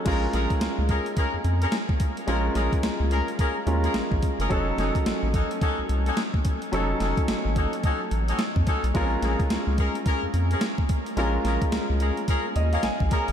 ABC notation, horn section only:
X:1
M:4/4
L:1/16
Q:"Swing 16ths" 1/4=108
K:Bbm
V:1 name="Horn section"
[DAB] z [DAB] z3 [DAB] z [DAB] z2 [DAB] z4 | [DAB] z [DAB] z3 [DAB] z [DAB] z2 [DAB] z3 [DAB] | [DEG=A] z [DEGA] z3 [DEGA] z [DEGA] z2 [DEGA] z4 | [DEG=A] z [DEGA] z3 [DEGA] z [DEGA] z2 [DEGA] z2 [DEGA] z |
[DAB] z [DAB] z3 [DAB] z [DAB] z2 [DAB] z4 | [DAB] z [DAB] z3 [DAB] z [DAB] z2 [DAB] z2 [DAB] z |]